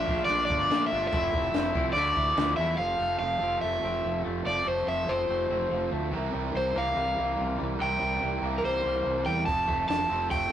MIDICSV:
0, 0, Header, 1, 6, 480
1, 0, Start_track
1, 0, Tempo, 417827
1, 1284, Time_signature, 4, 2, 24, 8
1, 12088, End_track
2, 0, Start_track
2, 0, Title_t, "Overdriven electric guitar"
2, 0, Program_c, 0, 29
2, 0, Note_on_c, 0, 76, 108
2, 281, Note_off_c, 0, 76, 0
2, 285, Note_on_c, 0, 74, 105
2, 504, Note_off_c, 0, 74, 0
2, 518, Note_on_c, 0, 74, 99
2, 986, Note_off_c, 0, 74, 0
2, 995, Note_on_c, 0, 76, 108
2, 1223, Note_off_c, 0, 76, 0
2, 1237, Note_on_c, 0, 76, 109
2, 2175, Note_off_c, 0, 76, 0
2, 2215, Note_on_c, 0, 74, 91
2, 2904, Note_off_c, 0, 74, 0
2, 2949, Note_on_c, 0, 76, 104
2, 3179, Note_off_c, 0, 76, 0
2, 3189, Note_on_c, 0, 77, 99
2, 3653, Note_off_c, 0, 77, 0
2, 3667, Note_on_c, 0, 77, 86
2, 4147, Note_off_c, 0, 77, 0
2, 4151, Note_on_c, 0, 76, 91
2, 4834, Note_off_c, 0, 76, 0
2, 5131, Note_on_c, 0, 74, 95
2, 5353, Note_off_c, 0, 74, 0
2, 5372, Note_on_c, 0, 72, 67
2, 5594, Note_off_c, 0, 72, 0
2, 5611, Note_on_c, 0, 76, 81
2, 5848, Note_on_c, 0, 72, 72
2, 5858, Note_off_c, 0, 76, 0
2, 6763, Note_off_c, 0, 72, 0
2, 7544, Note_on_c, 0, 72, 78
2, 7784, Note_off_c, 0, 72, 0
2, 7784, Note_on_c, 0, 77, 84
2, 8690, Note_off_c, 0, 77, 0
2, 8979, Note_on_c, 0, 79, 94
2, 9857, Note_on_c, 0, 70, 61
2, 9878, Note_off_c, 0, 79, 0
2, 9933, Note_off_c, 0, 70, 0
2, 9938, Note_on_c, 0, 72, 89
2, 10637, Note_on_c, 0, 79, 95
2, 10674, Note_off_c, 0, 72, 0
2, 10860, Note_off_c, 0, 79, 0
2, 10865, Note_on_c, 0, 81, 102
2, 11343, Note_off_c, 0, 81, 0
2, 11356, Note_on_c, 0, 81, 97
2, 11807, Note_off_c, 0, 81, 0
2, 11845, Note_on_c, 0, 79, 91
2, 12088, Note_off_c, 0, 79, 0
2, 12088, End_track
3, 0, Start_track
3, 0, Title_t, "Overdriven electric guitar"
3, 0, Program_c, 1, 29
3, 0, Note_on_c, 1, 46, 69
3, 0, Note_on_c, 1, 62, 71
3, 0, Note_on_c, 1, 65, 82
3, 103, Note_on_c, 1, 53, 77
3, 326, Note_off_c, 1, 62, 0
3, 340, Note_on_c, 1, 62, 68
3, 563, Note_off_c, 1, 46, 0
3, 568, Note_off_c, 1, 65, 0
3, 573, Note_on_c, 1, 65, 83
3, 818, Note_on_c, 1, 57, 68
3, 1054, Note_off_c, 1, 65, 0
3, 1059, Note_on_c, 1, 65, 75
3, 1292, Note_off_c, 1, 62, 0
3, 1293, Note_off_c, 1, 53, 0
3, 1298, Note_on_c, 1, 53, 68
3, 1526, Note_off_c, 1, 65, 0
3, 1531, Note_on_c, 1, 64, 76
3, 1769, Note_on_c, 1, 60, 74
3, 1991, Note_off_c, 1, 53, 0
3, 2004, Note_on_c, 1, 53, 70
3, 2244, Note_off_c, 1, 53, 0
3, 2247, Note_off_c, 1, 60, 0
3, 2248, Note_off_c, 1, 64, 0
3, 2249, Note_on_c, 1, 50, 66
3, 2485, Note_on_c, 1, 64, 75
3, 2718, Note_off_c, 1, 57, 0
3, 2723, Note_on_c, 1, 53, 70
3, 2938, Note_off_c, 1, 64, 0
3, 2952, Note_on_c, 1, 64, 78
3, 3169, Note_off_c, 1, 53, 0
3, 3178, Note_off_c, 1, 50, 0
3, 3183, Note_on_c, 1, 53, 78
3, 3197, Note_on_c, 1, 57, 77
3, 3198, Note_off_c, 1, 64, 0
3, 3204, Note_on_c, 1, 60, 88
3, 3206, Note_on_c, 1, 65, 82
3, 3217, Note_on_c, 1, 69, 80
3, 3890, Note_off_c, 1, 69, 0
3, 3895, Note_on_c, 1, 69, 75
3, 3901, Note_off_c, 1, 65, 0
3, 3905, Note_on_c, 1, 65, 72
3, 3911, Note_off_c, 1, 60, 0
3, 3915, Note_off_c, 1, 57, 0
3, 3916, Note_on_c, 1, 60, 73
3, 3919, Note_on_c, 1, 57, 61
3, 3924, Note_off_c, 1, 53, 0
3, 3929, Note_on_c, 1, 53, 74
3, 5098, Note_off_c, 1, 69, 0
3, 5104, Note_off_c, 1, 53, 0
3, 5109, Note_on_c, 1, 53, 75
3, 5110, Note_off_c, 1, 57, 0
3, 5124, Note_on_c, 1, 57, 76
3, 5132, Note_off_c, 1, 60, 0
3, 5136, Note_on_c, 1, 60, 92
3, 5140, Note_off_c, 1, 65, 0
3, 5144, Note_on_c, 1, 65, 89
3, 5151, Note_on_c, 1, 69, 94
3, 5813, Note_off_c, 1, 69, 0
3, 5827, Note_on_c, 1, 69, 80
3, 5832, Note_off_c, 1, 57, 0
3, 5838, Note_off_c, 1, 65, 0
3, 5843, Note_on_c, 1, 65, 70
3, 5845, Note_off_c, 1, 60, 0
3, 5850, Note_on_c, 1, 60, 63
3, 5860, Note_on_c, 1, 57, 71
3, 5864, Note_off_c, 1, 53, 0
3, 5869, Note_on_c, 1, 53, 68
3, 7024, Note_off_c, 1, 69, 0
3, 7026, Note_on_c, 1, 48, 68
3, 7030, Note_off_c, 1, 53, 0
3, 7035, Note_on_c, 1, 52, 80
3, 7041, Note_off_c, 1, 57, 0
3, 7043, Note_off_c, 1, 60, 0
3, 7047, Note_on_c, 1, 55, 81
3, 7048, Note_on_c, 1, 60, 86
3, 7058, Note_off_c, 1, 65, 0
3, 7062, Note_on_c, 1, 64, 88
3, 7063, Note_on_c, 1, 70, 96
3, 7748, Note_off_c, 1, 52, 0
3, 7758, Note_off_c, 1, 70, 0
3, 7762, Note_off_c, 1, 64, 0
3, 7762, Note_on_c, 1, 70, 81
3, 7774, Note_off_c, 1, 60, 0
3, 7776, Note_on_c, 1, 64, 75
3, 7778, Note_on_c, 1, 60, 74
3, 7780, Note_off_c, 1, 55, 0
3, 7785, Note_on_c, 1, 55, 67
3, 7797, Note_off_c, 1, 48, 0
3, 7797, Note_on_c, 1, 52, 68
3, 7803, Note_on_c, 1, 48, 63
3, 8935, Note_off_c, 1, 48, 0
3, 8947, Note_off_c, 1, 52, 0
3, 8949, Note_off_c, 1, 55, 0
3, 8949, Note_on_c, 1, 48, 82
3, 8951, Note_off_c, 1, 70, 0
3, 8958, Note_off_c, 1, 64, 0
3, 8961, Note_on_c, 1, 52, 85
3, 8963, Note_on_c, 1, 55, 76
3, 8968, Note_off_c, 1, 60, 0
3, 8972, Note_on_c, 1, 60, 92
3, 8980, Note_on_c, 1, 64, 88
3, 8984, Note_on_c, 1, 70, 81
3, 9664, Note_off_c, 1, 48, 0
3, 9668, Note_off_c, 1, 70, 0
3, 9670, Note_off_c, 1, 52, 0
3, 9671, Note_off_c, 1, 55, 0
3, 9673, Note_off_c, 1, 64, 0
3, 9681, Note_on_c, 1, 70, 73
3, 9687, Note_on_c, 1, 64, 75
3, 9696, Note_off_c, 1, 60, 0
3, 9700, Note_on_c, 1, 60, 72
3, 9701, Note_on_c, 1, 55, 71
3, 9716, Note_on_c, 1, 48, 66
3, 9716, Note_on_c, 1, 52, 70
3, 10863, Note_off_c, 1, 52, 0
3, 10868, Note_on_c, 1, 53, 73
3, 10869, Note_off_c, 1, 70, 0
3, 10872, Note_off_c, 1, 64, 0
3, 10876, Note_off_c, 1, 55, 0
3, 10881, Note_on_c, 1, 57, 78
3, 10886, Note_off_c, 1, 48, 0
3, 10891, Note_off_c, 1, 60, 0
3, 10896, Note_on_c, 1, 60, 84
3, 10907, Note_on_c, 1, 65, 76
3, 10914, Note_on_c, 1, 69, 86
3, 11598, Note_off_c, 1, 69, 0
3, 11603, Note_on_c, 1, 69, 80
3, 11612, Note_off_c, 1, 65, 0
3, 11617, Note_on_c, 1, 65, 69
3, 11623, Note_off_c, 1, 60, 0
3, 11628, Note_on_c, 1, 60, 75
3, 11634, Note_off_c, 1, 57, 0
3, 11638, Note_on_c, 1, 57, 72
3, 11639, Note_off_c, 1, 53, 0
3, 11643, Note_on_c, 1, 53, 67
3, 12088, Note_off_c, 1, 53, 0
3, 12088, Note_off_c, 1, 57, 0
3, 12088, Note_off_c, 1, 60, 0
3, 12088, Note_off_c, 1, 65, 0
3, 12088, Note_off_c, 1, 69, 0
3, 12088, End_track
4, 0, Start_track
4, 0, Title_t, "Clean electric guitar"
4, 0, Program_c, 2, 27
4, 0, Note_on_c, 2, 53, 77
4, 0, Note_on_c, 2, 57, 84
4, 80, Note_on_c, 2, 65, 75
4, 104, Note_on_c, 2, 62, 67
4, 116, Note_off_c, 2, 57, 0
4, 121, Note_on_c, 2, 57, 56
4, 322, Note_on_c, 2, 46, 86
4, 331, Note_off_c, 2, 53, 0
4, 335, Note_on_c, 2, 53, 94
4, 336, Note_off_c, 2, 57, 0
4, 340, Note_on_c, 2, 57, 87
4, 342, Note_off_c, 2, 62, 0
4, 354, Note_off_c, 2, 65, 0
4, 355, Note_on_c, 2, 62, 103
4, 359, Note_on_c, 2, 65, 96
4, 801, Note_off_c, 2, 53, 0
4, 806, Note_on_c, 2, 53, 80
4, 811, Note_off_c, 2, 57, 0
4, 815, Note_on_c, 2, 57, 78
4, 816, Note_off_c, 2, 62, 0
4, 829, Note_on_c, 2, 62, 79
4, 837, Note_off_c, 2, 65, 0
4, 841, Note_on_c, 2, 65, 89
4, 1041, Note_off_c, 2, 65, 0
4, 1043, Note_off_c, 2, 46, 0
4, 1046, Note_on_c, 2, 65, 70
4, 1054, Note_off_c, 2, 62, 0
4, 1068, Note_on_c, 2, 62, 73
4, 1079, Note_off_c, 2, 57, 0
4, 1084, Note_on_c, 2, 57, 67
4, 1282, Note_off_c, 2, 62, 0
4, 1283, Note_off_c, 2, 53, 0
4, 1287, Note_on_c, 2, 53, 90
4, 1300, Note_off_c, 2, 57, 0
4, 1304, Note_on_c, 2, 57, 101
4, 1314, Note_on_c, 2, 60, 100
4, 1327, Note_off_c, 2, 65, 0
4, 1332, Note_on_c, 2, 64, 116
4, 1763, Note_off_c, 2, 53, 0
4, 1777, Note_off_c, 2, 57, 0
4, 1777, Note_on_c, 2, 53, 60
4, 1788, Note_off_c, 2, 60, 0
4, 1791, Note_on_c, 2, 57, 79
4, 1797, Note_off_c, 2, 64, 0
4, 1802, Note_on_c, 2, 60, 73
4, 1810, Note_on_c, 2, 64, 83
4, 1998, Note_off_c, 2, 64, 0
4, 2011, Note_on_c, 2, 64, 79
4, 2017, Note_off_c, 2, 60, 0
4, 2029, Note_off_c, 2, 57, 0
4, 2031, Note_on_c, 2, 60, 71
4, 2043, Note_on_c, 2, 57, 64
4, 2233, Note_off_c, 2, 64, 0
4, 2236, Note_off_c, 2, 53, 0
4, 2243, Note_off_c, 2, 60, 0
4, 2243, Note_on_c, 2, 50, 83
4, 2249, Note_off_c, 2, 57, 0
4, 2256, Note_on_c, 2, 53, 90
4, 2271, Note_on_c, 2, 57, 97
4, 2279, Note_on_c, 2, 64, 93
4, 2711, Note_off_c, 2, 50, 0
4, 2724, Note_off_c, 2, 53, 0
4, 2725, Note_on_c, 2, 50, 81
4, 2738, Note_on_c, 2, 53, 83
4, 2740, Note_off_c, 2, 57, 0
4, 2753, Note_off_c, 2, 64, 0
4, 2754, Note_on_c, 2, 57, 74
4, 2767, Note_on_c, 2, 64, 84
4, 2954, Note_off_c, 2, 64, 0
4, 2968, Note_on_c, 2, 64, 70
4, 2976, Note_off_c, 2, 57, 0
4, 2990, Note_on_c, 2, 57, 70
4, 2992, Note_off_c, 2, 53, 0
4, 3006, Note_on_c, 2, 53, 59
4, 3191, Note_off_c, 2, 50, 0
4, 3192, Note_off_c, 2, 64, 0
4, 3201, Note_off_c, 2, 53, 0
4, 3203, Note_off_c, 2, 57, 0
4, 3215, Note_on_c, 2, 53, 64
4, 3446, Note_on_c, 2, 57, 58
4, 3680, Note_off_c, 2, 53, 0
4, 3685, Note_on_c, 2, 53, 59
4, 3940, Note_on_c, 2, 60, 59
4, 4161, Note_off_c, 2, 57, 0
4, 4174, Note_on_c, 2, 57, 67
4, 4409, Note_off_c, 2, 60, 0
4, 4414, Note_on_c, 2, 60, 61
4, 4644, Note_off_c, 2, 53, 0
4, 4649, Note_on_c, 2, 53, 64
4, 4864, Note_off_c, 2, 57, 0
4, 4878, Note_on_c, 2, 57, 65
4, 5117, Note_off_c, 2, 53, 0
4, 5121, Note_on_c, 2, 53, 75
4, 5343, Note_off_c, 2, 57, 0
4, 5357, Note_on_c, 2, 57, 62
4, 5591, Note_off_c, 2, 53, 0
4, 5596, Note_on_c, 2, 53, 61
4, 5842, Note_off_c, 2, 60, 0
4, 5847, Note_on_c, 2, 60, 61
4, 6076, Note_off_c, 2, 57, 0
4, 6089, Note_on_c, 2, 57, 65
4, 6326, Note_off_c, 2, 60, 0
4, 6330, Note_on_c, 2, 60, 62
4, 6564, Note_off_c, 2, 53, 0
4, 6569, Note_on_c, 2, 53, 68
4, 6793, Note_off_c, 2, 57, 0
4, 6807, Note_on_c, 2, 57, 60
4, 7036, Note_off_c, 2, 53, 0
4, 7040, Note_on_c, 2, 48, 71
4, 7048, Note_off_c, 2, 57, 0
4, 7277, Note_on_c, 2, 55, 61
4, 7503, Note_off_c, 2, 48, 0
4, 7516, Note_on_c, 2, 48, 59
4, 7764, Note_off_c, 2, 60, 0
4, 7769, Note_on_c, 2, 58, 65
4, 7989, Note_off_c, 2, 55, 0
4, 8002, Note_on_c, 2, 55, 59
4, 8237, Note_off_c, 2, 58, 0
4, 8251, Note_on_c, 2, 58, 64
4, 8458, Note_off_c, 2, 48, 0
4, 8471, Note_on_c, 2, 48, 72
4, 8702, Note_off_c, 2, 55, 0
4, 8716, Note_on_c, 2, 55, 71
4, 8942, Note_off_c, 2, 48, 0
4, 8955, Note_on_c, 2, 48, 67
4, 9194, Note_off_c, 2, 55, 0
4, 9207, Note_on_c, 2, 55, 63
4, 9431, Note_off_c, 2, 48, 0
4, 9445, Note_on_c, 2, 48, 58
4, 9449, Note_off_c, 2, 58, 0
4, 9697, Note_on_c, 2, 58, 67
4, 9919, Note_off_c, 2, 55, 0
4, 9933, Note_on_c, 2, 55, 67
4, 10160, Note_off_c, 2, 58, 0
4, 10174, Note_on_c, 2, 58, 60
4, 10406, Note_off_c, 2, 48, 0
4, 10420, Note_on_c, 2, 48, 64
4, 10639, Note_off_c, 2, 55, 0
4, 10653, Note_on_c, 2, 55, 69
4, 10878, Note_off_c, 2, 48, 0
4, 10882, Note_on_c, 2, 53, 64
4, 10890, Note_off_c, 2, 55, 0
4, 10890, Note_off_c, 2, 58, 0
4, 11113, Note_on_c, 2, 57, 66
4, 11357, Note_off_c, 2, 53, 0
4, 11362, Note_on_c, 2, 53, 62
4, 11601, Note_on_c, 2, 60, 64
4, 11825, Note_off_c, 2, 57, 0
4, 11838, Note_on_c, 2, 57, 67
4, 12082, Note_off_c, 2, 60, 0
4, 12088, Note_off_c, 2, 53, 0
4, 12088, Note_off_c, 2, 57, 0
4, 12088, End_track
5, 0, Start_track
5, 0, Title_t, "Fingered electric bass"
5, 0, Program_c, 3, 33
5, 94, Note_on_c, 3, 34, 96
5, 288, Note_off_c, 3, 34, 0
5, 337, Note_on_c, 3, 34, 84
5, 529, Note_off_c, 3, 34, 0
5, 576, Note_on_c, 3, 31, 98
5, 769, Note_off_c, 3, 31, 0
5, 815, Note_on_c, 3, 46, 99
5, 1008, Note_off_c, 3, 46, 0
5, 1059, Note_on_c, 3, 31, 95
5, 1250, Note_off_c, 3, 31, 0
5, 1296, Note_on_c, 3, 29, 95
5, 1488, Note_off_c, 3, 29, 0
5, 1534, Note_on_c, 3, 29, 94
5, 1727, Note_off_c, 3, 29, 0
5, 1770, Note_on_c, 3, 29, 84
5, 1965, Note_off_c, 3, 29, 0
5, 2021, Note_on_c, 3, 36, 89
5, 2211, Note_off_c, 3, 36, 0
5, 2235, Note_on_c, 3, 38, 85
5, 2436, Note_off_c, 3, 38, 0
5, 2492, Note_on_c, 3, 38, 92
5, 2686, Note_off_c, 3, 38, 0
5, 2719, Note_on_c, 3, 38, 95
5, 2918, Note_off_c, 3, 38, 0
5, 2963, Note_on_c, 3, 40, 91
5, 3161, Note_off_c, 3, 40, 0
5, 3199, Note_on_c, 3, 29, 89
5, 3420, Note_off_c, 3, 29, 0
5, 3436, Note_on_c, 3, 29, 77
5, 3658, Note_off_c, 3, 29, 0
5, 3678, Note_on_c, 3, 29, 77
5, 3899, Note_off_c, 3, 29, 0
5, 3915, Note_on_c, 3, 29, 82
5, 4138, Note_off_c, 3, 29, 0
5, 4164, Note_on_c, 3, 29, 75
5, 4383, Note_off_c, 3, 29, 0
5, 4397, Note_on_c, 3, 29, 85
5, 4619, Note_off_c, 3, 29, 0
5, 4643, Note_on_c, 3, 29, 91
5, 4863, Note_off_c, 3, 29, 0
5, 4891, Note_on_c, 3, 29, 81
5, 5107, Note_off_c, 3, 29, 0
5, 5118, Note_on_c, 3, 29, 81
5, 5341, Note_off_c, 3, 29, 0
5, 5359, Note_on_c, 3, 29, 80
5, 5581, Note_off_c, 3, 29, 0
5, 5590, Note_on_c, 3, 29, 75
5, 5816, Note_off_c, 3, 29, 0
5, 5841, Note_on_c, 3, 29, 85
5, 6062, Note_off_c, 3, 29, 0
5, 6077, Note_on_c, 3, 29, 74
5, 6300, Note_off_c, 3, 29, 0
5, 6317, Note_on_c, 3, 29, 82
5, 6541, Note_off_c, 3, 29, 0
5, 6558, Note_on_c, 3, 29, 86
5, 6781, Note_off_c, 3, 29, 0
5, 6791, Note_on_c, 3, 38, 85
5, 7025, Note_on_c, 3, 36, 87
5, 7042, Note_off_c, 3, 38, 0
5, 7254, Note_off_c, 3, 36, 0
5, 7282, Note_on_c, 3, 36, 80
5, 7503, Note_off_c, 3, 36, 0
5, 7517, Note_on_c, 3, 36, 81
5, 7740, Note_off_c, 3, 36, 0
5, 7764, Note_on_c, 3, 36, 86
5, 7984, Note_off_c, 3, 36, 0
5, 7999, Note_on_c, 3, 36, 86
5, 8222, Note_off_c, 3, 36, 0
5, 8252, Note_on_c, 3, 36, 76
5, 8469, Note_off_c, 3, 36, 0
5, 8494, Note_on_c, 3, 36, 88
5, 8710, Note_off_c, 3, 36, 0
5, 8744, Note_on_c, 3, 36, 86
5, 8955, Note_off_c, 3, 36, 0
5, 8969, Note_on_c, 3, 36, 90
5, 9187, Note_off_c, 3, 36, 0
5, 9204, Note_on_c, 3, 36, 77
5, 9424, Note_off_c, 3, 36, 0
5, 9445, Note_on_c, 3, 36, 74
5, 9664, Note_off_c, 3, 36, 0
5, 9673, Note_on_c, 3, 36, 80
5, 9897, Note_off_c, 3, 36, 0
5, 9925, Note_on_c, 3, 36, 75
5, 10144, Note_off_c, 3, 36, 0
5, 10168, Note_on_c, 3, 36, 78
5, 10385, Note_off_c, 3, 36, 0
5, 10403, Note_on_c, 3, 36, 84
5, 10623, Note_off_c, 3, 36, 0
5, 10638, Note_on_c, 3, 40, 86
5, 10860, Note_off_c, 3, 40, 0
5, 10885, Note_on_c, 3, 29, 93
5, 11104, Note_off_c, 3, 29, 0
5, 11132, Note_on_c, 3, 29, 81
5, 11347, Note_off_c, 3, 29, 0
5, 11369, Note_on_c, 3, 29, 75
5, 11585, Note_off_c, 3, 29, 0
5, 11602, Note_on_c, 3, 29, 81
5, 11821, Note_off_c, 3, 29, 0
5, 11853, Note_on_c, 3, 29, 77
5, 12068, Note_off_c, 3, 29, 0
5, 12088, End_track
6, 0, Start_track
6, 0, Title_t, "Drums"
6, 89, Note_on_c, 9, 36, 92
6, 204, Note_off_c, 9, 36, 0
6, 335, Note_on_c, 9, 49, 64
6, 450, Note_off_c, 9, 49, 0
6, 575, Note_on_c, 9, 36, 92
6, 690, Note_off_c, 9, 36, 0
6, 818, Note_on_c, 9, 49, 66
6, 825, Note_on_c, 9, 38, 110
6, 933, Note_off_c, 9, 49, 0
6, 940, Note_off_c, 9, 38, 0
6, 1290, Note_on_c, 9, 49, 54
6, 1295, Note_on_c, 9, 36, 99
6, 1405, Note_off_c, 9, 49, 0
6, 1410, Note_off_c, 9, 36, 0
6, 1533, Note_on_c, 9, 36, 91
6, 1648, Note_off_c, 9, 36, 0
6, 1769, Note_on_c, 9, 49, 54
6, 1776, Note_on_c, 9, 38, 108
6, 1884, Note_off_c, 9, 49, 0
6, 1891, Note_off_c, 9, 38, 0
6, 2014, Note_on_c, 9, 36, 94
6, 2129, Note_off_c, 9, 36, 0
6, 2258, Note_on_c, 9, 49, 59
6, 2373, Note_off_c, 9, 49, 0
6, 2490, Note_on_c, 9, 36, 87
6, 2605, Note_off_c, 9, 36, 0
6, 2727, Note_on_c, 9, 49, 59
6, 2734, Note_on_c, 9, 38, 117
6, 2842, Note_off_c, 9, 49, 0
6, 2849, Note_off_c, 9, 38, 0
6, 10887, Note_on_c, 9, 46, 46
6, 10888, Note_on_c, 9, 36, 100
6, 11002, Note_off_c, 9, 46, 0
6, 11003, Note_off_c, 9, 36, 0
6, 11128, Note_on_c, 9, 36, 77
6, 11243, Note_off_c, 9, 36, 0
6, 11371, Note_on_c, 9, 46, 51
6, 11378, Note_on_c, 9, 38, 96
6, 11486, Note_off_c, 9, 46, 0
6, 11493, Note_off_c, 9, 38, 0
6, 11844, Note_on_c, 9, 46, 56
6, 11848, Note_on_c, 9, 36, 87
6, 11959, Note_off_c, 9, 46, 0
6, 11963, Note_off_c, 9, 36, 0
6, 12088, End_track
0, 0, End_of_file